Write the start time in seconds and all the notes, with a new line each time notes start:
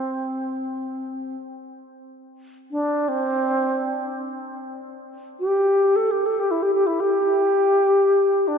Already playing: C4
2.71 D4
3.08 C4
5.40 G4
5.96 A4
6.11 G4
6.26 A4
6.40 G4
6.51 E4
6.62 G4
6.74 G4
6.87 E4
7.00 G4
8.48 D4